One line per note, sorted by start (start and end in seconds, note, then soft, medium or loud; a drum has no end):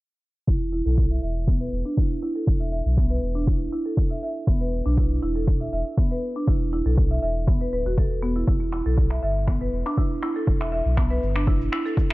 0.47 0.81 E1 medium
0.47 0.59 E4 medium
0.47 kick loud
0.47 cabasa medium
0.73 0.84 E4 medium
0.86 1.19 B1 medium
0.86 0.96 A4 medium
0.86 cabasa soft
0.98 kick medium
0.98 cabasa soft
1.11 1.17 E5 medium
1.23 1.69 E1 medium
1.23 1.34 E5 medium
1.48 1.55 B3 medium
1.48 kick loud
1.48 cabasa soft
1.60 1.67 B4 medium
1.72 1.83 E1 medium
1.85 1.96 D4 medium
1.97 2.09 E4 medium
1.97 kick medium
1.97 cabasa medium
2.22 2.34 E4 medium
2.36 2.46 A4 medium
2.47 2.81 E1 medium
2.47 kick loud
2.47 cabasa medium
2.60 2.67 E5 medium
2.72 2.84 E5 medium
2.86 3.19 B1 medium
2.86 cabasa soft
2.97 3.05 B3 medium
2.97 kick loud
2.97 cabasa soft
3.10 3.17 B4 medium
3.22 3.69 E1 medium
3.35 3.46 D4 medium
3.47 3.59 E4 medium
3.47 kick loud
3.47 cabasa soft
3.72 3.84 E4 medium
3.86 3.96 A4 medium
3.97 kick loud
3.97 cabasa medium
4.11 4.17 E5 medium
4.23 4.35 E5 medium
4.23 cabasa medium
4.47 4.81 E1 loud
4.47 4.55 B3 medium
4.47 kick loud
4.47 cabasa medium
4.61 4.67 B4 medium
4.73 cabasa medium
4.86 5.19 B1 medium
4.86 4.96 D4 loud
4.86 cabasa soft
4.97 5.09 E4 medium
4.97 kick loud
4.97 cabasa soft
5.12 cabasa medium
5.22 5.69 E1 medium
5.22 5.34 E4 medium
5.22 cabasa medium
5.36 5.46 A4 medium
5.36 cabasa soft
5.48 kick loud
5.48 cabasa soft
5.61 5.67 E5 medium
5.61 cabasa medium
5.73 5.83 E1 medium
5.73 5.85 E5 medium
5.73 cabasa medium
5.87 cabasa medium
5.98 6.05 B3 medium
5.98 kick loud
5.98 cabasa medium
6.11 6.17 B4 medium
6.11 cabasa soft
6.23 cabasa medium
6.36 6.47 D4 medium
6.36 cabasa medium
6.48 6.82 E1 medium
6.48 6.60 E4 medium
6.48 kick loud
6.48 cabasa medium
6.61 cabasa medium
6.73 6.85 E4 medium
6.73 cabasa medium
6.86 7.19 B1 medium
6.86 6.97 A4 medium
6.86 cabasa soft
6.98 kick loud
6.98 cabasa medium
7.11 7.17 E5 medium
7.11 cabasa soft
7.22 7.47 E1 medium
7.22 7.34 E5 medium
7.22 cabasa medium
7.36 cabasa soft
7.48 7.68 E1 medium
7.48 7.55 B3 medium
7.48 kick loud
7.48 cabasa soft
7.61 7.67 B4 medium
7.61 cabasa medium
7.72 7.83 D1 medium
7.72 7.85 B4 medium
7.72 cabasa medium
7.85 8.44 E1 medium
7.85 7.97 F#4 medium
7.85 cabasa soft
7.98 8.10 A4 medium
7.98 kick loud
7.98 cabasa medium
8.12 cabasa soft
8.23 8.35 B3 medium
8.23 cabasa medium
8.36 8.47 E4 medium
8.36 cabasa soft
8.48 8.81 E1 loud
8.48 8.60 E4 medium
8.48 kick loud
8.48 cabasa medium
8.61 cabasa soft
8.72 8.84 E4 medium
8.72 finger snap medium
8.86 9.19 B1 medium
8.86 8.97 A4 medium
8.98 kick loud
8.98 cabasa soft
9.10 9.17 E5 medium
9.10 finger snap medium
9.23 9.69 G1 medium
9.23 9.34 E5 medium
9.23 cabasa medium
9.36 cabasa soft
9.47 9.55 B3 medium
9.47 finger snap medium
9.47 kick loud
9.61 9.67 B4 medium
9.61 cabasa medium
9.73 9.83 E1 medium
9.73 cabasa soft
9.86 9.97 D4 medium
9.86 finger snap medium
9.86 cabasa medium
9.97 10.10 E4 medium
9.97 kick loud
9.97 cabasa medium
10.12 cabasa soft
10.23 10.35 E4 medium
10.23 finger snap medium
10.23 cabasa medium
10.36 10.47 A4 medium
10.36 cabasa soft
10.47 10.81 E1 medium
10.47 kick loud
10.47 cabasa medium
10.61 10.67 E5 medium
10.61 finger snap medium
10.72 10.84 E5 medium
10.72 cabasa medium
10.86 11.19 B1 medium
10.86 cabasa soft
10.97 11.05 B3 medium
10.97 finger snap medium
10.97 kick medium
10.97 cabasa soft
11.10 11.17 B4 medium
11.10 cabasa soft
11.23 11.69 G1 medium
11.23 cabasa medium
11.36 11.46 D4 medium
11.36 finger snap medium
11.36 cabasa soft
11.47 11.59 E4 medium
11.47 kick loud
11.47 cabasa soft
11.61 cabasa medium
11.72 11.84 E4 medium
11.72 finger snap medium
11.72 cabasa soft
11.86 11.96 A4 medium
11.86 cabasa soft
11.97 kick medium
11.97 cabasa medium